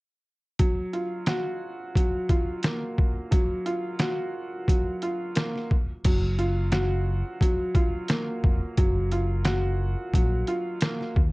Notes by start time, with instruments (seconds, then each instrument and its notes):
0.59 upright piano F#3, kick, closed hi-hat
0.93 upright piano F4, closed hi-hat
1.26 upright piano F#4, snare, closed hi-hat
1.95 upright piano F#3, kick, closed hi-hat
2.29 upright piano F4, kick, closed hi-hat
2.63 upright piano A#3, snare, closed hi-hat
2.98 kick
3.31 upright piano F#3, kick, closed hi-hat
3.66 upright piano F4, closed hi-hat
3.99 upright piano F#4, snare, closed hi-hat
4.68 upright piano F#3, kick, closed hi-hat
5.02 upright piano F4, closed hi-hat
5.35 upright piano A#3, snare, closed hi-hat
5.56 snare
5.71 kick
6.05 fingered electric bass F#1, upright piano F#3, kick, closed hi-hat, crash
6.39 upright piano F4, closed hi-hat
6.72 upright piano F#4, snare, closed hi-hat
7.41 upright piano F#3, kick, closed hi-hat
7.75 upright piano F4, kick, closed hi-hat
8.08 upright piano A#3, snare, closed hi-hat
8.44 fingered electric bass F1, kick
8.77 fingered electric bass F#1, upright piano F#3, kick, closed hi-hat
9.12 upright piano F4, closed hi-hat
9.45 upright piano F#4, snare, closed hi-hat
10.14 fingered electric bass A#1, upright piano F#3, kick, closed hi-hat
10.47 upright piano F4, closed hi-hat
10.81 upright piano A#3, snare, closed hi-hat
11.01 snare
11.16 fingered electric bass D#2, kick